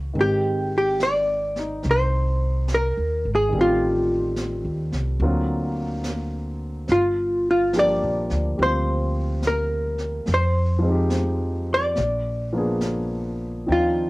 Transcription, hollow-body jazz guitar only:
0.21 0.76 G4 medium
0.78 1.03 G4 medium
1.03 1.82 D5 loud
1.91 2.74 C5 medium
2.74 3.30 A#4 medium
3.35 3.59 G#4 medium
3.61 6.05 F4 medium
6.92 7.49 F4 medium
7.51 7.77 F4 medium
7.79 8.62 D5 loud
8.63 9.47 C5 medium
9.47 10.31 A#4 medium
10.34 11.11 C5 medium
11.74 13.38 D5 loud
13.72 14.10 F4 medium

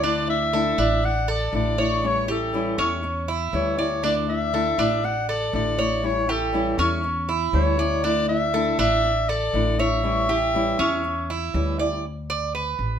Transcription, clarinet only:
0.04 0.29 D5 loud
0.30 1.06 E5 loud
1.05 1.29 F#5 loud
1.30 1.53 D5 loud
1.56 2.08 D5 loud
2.06 2.30 C#5 loud
2.31 3.01 A4 medium
3.55 4.01 C#5 medium
4.05 4.16 D5 loud
4.29 5.06 E5 loud
5.05 5.29 F#5 loud
5.29 5.52 D5 medium
5.55 6.07 D5 loud
6.05 6.31 C#5 loud
6.30 7.04 A4 medium
7.55 8.06 C#5 medium
8.04 8.28 D5 loud
8.29 8.75 E5 loud
8.80 9.30 E5 loud
9.29 9.81 D5 loud
9.80 11.55 E5 loud

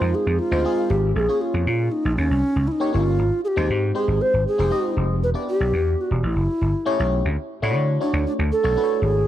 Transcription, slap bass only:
0.01 0.12 F2 medium
0.27 0.37 F2 medium
0.52 0.62 D2 medium
0.90 1.11 G#1 medium
1.16 1.26 A#1 medium
1.54 1.64 F2 medium
1.67 1.88 A#2 loud
2.05 2.15 A#1 medium
2.18 2.28 D#2 loud
2.31 2.41 C2 medium
2.56 2.66 C#2 medium
2.94 3.19 G1 medium
3.19 3.29 G#1 medium
3.57 3.68 D#2 medium
3.70 3.91 G#2 loud
4.08 4.18 G#1 medium
4.34 4.44 G#1 medium
4.59 4.69 F1 medium
4.97 5.22 F1 medium
5.22 5.33 E1 medium
5.60 5.71 B1 medium
5.73 5.94 E2 medium
6.11 6.21 E1 medium
6.23 6.34 A1 loud
6.36 6.46 F#1 medium
6.61 6.72 G1 medium
7.00 7.21 B1 medium
7.25 7.36 D2 medium
7.63 7.76 A2 medium
7.76 7.97 D3 loud
8.13 8.24 D2 medium
8.39 8.50 D2 medium
8.64 8.75 B1 medium
9.02 9.23 G#1 medium

